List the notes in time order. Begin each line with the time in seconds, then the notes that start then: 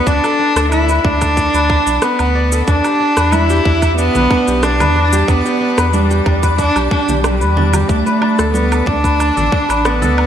Already playing: A4 B4
0.07 D2 D4, kick, shaker
0.24 A4, low woodblock, shaker
0.39 D4
0.56 D2 A4, cross-stick, shaker
0.72 D4 E4, low woodblock, shaker
0.89 B4, shaker
0.99 E4
1.04 D2 D4, kick
1.22 A4, kick, low woodblock, shaker
1.37 D4, kick, shaker
1.54 D2 B4, shaker
1.70 B4, kick, low woodblock
1.87 B1 D4, shaker
2.02 B3 B4, cross-stick, shaker
2.19 D2 F#5, low woodblock, shaker
2.35 D5
2.52 A4, shaker
2.67 E2 D4 D5, kick, shaker
2.84 G4, low woodblock, shaker
3.00 D4
3.17 E2 B4, cross-stick, shaker
3.32 D4 E4, high conga, low woodblock, shaker
3.50 G4, shaker
3.65 E2 D4, kick, muted conga
3.82 G4, kick, low woodblock, shaker
3.98 B3 D4, shaker
4.15 B1 B4, low conga, shaker
4.30 D4, kick, muted conga, low woodblock
4.48 B1 G4, shaker
4.63 D4, cross-stick, shaker
4.80 E2 B4, high conga, low conga, low woodblock, shaker
4.96 D4
5.13 G4, high conga, shaker
5.28 E2 B3 D4, kick, low woodblock, shaker
5.45 G4, shaker
5.61 D4
5.78 E2 B4, cross-stick, low woodblock, shaker
5.93 G3 D4, high conga, shaker
6.11 G4, shaker
6.26 E2 D4, kick, muted conga, high conga, low woodblock
6.43 B4, kick, shaker
6.59 D4, kick, shaker
6.76 B1 G4, muted conga, low woodblock, shaker
6.91 D4, kick, muted conga
7.08 B1 G4, low conga, shaker
7.24 G3 D4, cross-stick, low woodblock, shaker
7.41 E2 B4, shaker
7.57 D4, low conga
7.73 G4, muted conga, low conga, low woodblock, shaker
7.89 D2 A3 D4, kick, shaker
8.06 B4, shaker
8.21 D4, low woodblock
8.39 D2 A4, cross-stick, shaker
8.54 B3 D4, high conga, shaker
8.72 A4, low woodblock, shaker
8.86 D2 D4, kick, muted conga
9.04 B4, kick, shaker
9.20 D4, low woodblock, shaker
9.37 A1 A4, low conga, shaker
9.52 D4, kick, muted conga
9.69 A1 B4, low woodblock, shaker
9.85 B3 D4, cross-stick, shaker
10.02 D2 A4, high conga, low conga, shaker
10.17 D4, low woodblock